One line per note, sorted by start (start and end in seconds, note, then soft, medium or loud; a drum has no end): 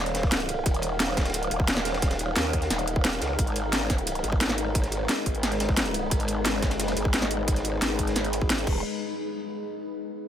0.00 0.65 D#1 loud
0.00 8.63 D#4 medium
0.00 6.07 A#4 medium
0.00 3.35 F5 medium
0.00 3.35 F#5 medium
0.06 snare soft
0.06 closed hi-hat soft
0.15 snare loud
0.15 closed hi-hat medium
0.15 ride medium
0.23 kick loud
0.23 snare soft
0.32 snare loud
0.32 closed hi-hat medium
0.32 ride medium
0.40 closed hi-hat soft
0.49 closed hi-hat medium
0.49 ride medium
0.66 1.25 D#1 loud
0.66 kick loud
0.66 closed hi-hat medium
0.66 ride medium
0.74 closed hi-hat soft
0.82 closed hi-hat medium
0.82 ride medium
1.00 snare loud
1.00 closed hi-hat medium
1.00 ride medium
1.09 snare medium
1.17 kick loud
1.17 snare medium
1.17 snare soft
1.17 closed hi-hat medium
1.17 ride medium
1.21 1.50 D1 loud
1.21 snare medium
1.21 ride medium
1.25 snare loud
1.25 closed hi-hat soft
1.25 ride medium
1.30 snare medium
1.30 ride medium
1.34 closed hi-hat medium
1.34 ride medium
1.43 closed hi-hat soft
1.51 2.35 D#1 loud
1.51 closed hi-hat medium
1.51 ride medium
1.60 kick loud
1.68 snare loud
1.68 closed hi-hat medium
1.68 ride medium
1.77 snare medium
1.77 closed hi-hat soft
1.85 snare loud
1.85 closed hi-hat medium
1.85 ride medium
1.94 snare loud
1.94 ride medium
2.02 kick loud
2.02 snare loud
2.02 closed hi-hat medium
2.02 ride medium
2.11 snare loud
2.11 closed hi-hat soft
2.11 ride medium
2.19 closed hi-hat medium
2.19 ride medium
2.35 2.69 D#2 loud
2.35 snare loud
2.35 closed hi-hat medium
2.35 ride loud
2.45 ride soft
2.53 kick medium
2.53 closed hi-hat medium
2.53 ride medium
2.62 snare medium
2.62 closed hi-hat soft
2.70 3.20 D#1 loud
2.70 snare soft
2.70 closed hi-hat medium
2.70 ride medium
2.78 closed hi-hat soft
2.78 ride soft
2.87 closed hi-hat medium
2.87 ride medium
2.96 kick loud
3.04 snare loud
3.04 closed hi-hat medium
3.04 ride medium
3.13 closed hi-hat soft
3.21 3.37 C#2 loud
3.21 snare loud
3.21 closed hi-hat medium
3.21 ride medium
3.39 4.23 G#1 loud
3.39 8.63 G#3 medium
3.39 8.63 B4 medium
3.39 kick loud
3.39 closed hi-hat medium
3.39 ride medium
3.47 closed hi-hat soft
3.56 closed hi-hat medium
3.56 ride medium
3.73 snare loud
3.73 closed hi-hat medium
3.73 ride medium
3.81 snare medium
3.90 kick loud
3.90 snare soft
3.90 closed hi-hat medium
3.90 ride medium
3.98 closed hi-hat soft
4.07 closed hi-hat medium
4.07 ride medium
4.15 closed hi-hat soft
4.24 5.08 G#1 loud
4.24 closed hi-hat medium
4.24 ride medium
4.32 kick loud
4.40 snare loud
4.40 closed hi-hat medium
4.40 ride medium
4.49 snare medium
4.49 closed hi-hat soft
4.58 closed hi-hat medium
4.58 ride medium
4.75 kick loud
4.75 closed hi-hat medium
4.75 ride medium
4.84 snare soft
4.84 closed hi-hat soft
4.92 closed hi-hat medium
4.92 ride medium
5.09 snare loud
5.09 closed hi-hat medium
5.09 ride medium
5.18 ride soft
5.26 6.10 G#1 loud
5.26 kick medium
5.26 closed hi-hat medium
5.26 ride medium
5.35 closed hi-hat soft
5.43 snare medium
5.43 snare soft
5.43 closed hi-hat medium
5.43 ride medium
5.52 snare medium
5.52 closed hi-hat soft
5.60 snare loud
5.60 closed hi-hat medium
5.60 ride medium
5.69 kick loud
5.69 snare soft
5.77 snare loud
5.77 closed hi-hat medium
5.77 ride medium
5.86 closed hi-hat soft
5.94 closed hi-hat medium
5.94 ride medium
6.11 6.70 G#1 loud
6.11 8.65 G#4 medium
6.11 kick loud
6.11 closed hi-hat loud
6.11 ride medium
6.20 closed hi-hat soft
6.28 closed hi-hat medium
6.28 ride medium
6.44 snare loud
6.44 closed hi-hat medium
6.44 ride medium
6.55 snare medium
6.62 kick loud
6.62 snare loud
6.62 snare soft
6.62 closed hi-hat medium
6.62 ride medium
6.70 6.95 G1 loud
6.70 snare loud
6.70 closed hi-hat soft
6.70 ride medium
6.79 snare loud
6.79 closed hi-hat loud
6.79 ride medium
6.88 snare loud
6.88 closed hi-hat soft
6.88 ride medium
6.97 7.81 G#1 loud
6.97 closed hi-hat medium
6.97 ride medium
7.05 kick loud
7.13 snare loud
7.13 closed hi-hat medium
7.13 ride medium
7.22 snare soft
7.22 snare medium
7.22 closed hi-hat soft
7.31 closed hi-hat medium
7.31 ride medium
7.48 kick loud
7.48 closed hi-hat loud
7.48 ride medium
7.56 snare soft
7.56 closed hi-hat soft
7.64 closed hi-hat medium
7.64 ride medium
7.82 8.66 G#1 loud
7.82 snare loud
7.82 closed hi-hat loud
7.82 ride medium
7.90 ride soft
7.99 kick medium
7.99 closed hi-hat medium
7.99 ride medium
8.07 snare medium
8.07 closed hi-hat soft
8.16 snare soft
8.16 closed hi-hat loud
8.16 ride medium
8.24 closed hi-hat soft
8.24 ride soft
8.33 closed hi-hat medium
8.33 ride medium
8.42 kick loud
8.50 snare loud
8.50 closed hi-hat loud
8.50 ride medium
8.58 closed hi-hat soft
8.58 ride medium
8.67 8.83 D#1 loud
8.67 kick loud
8.67 crash medium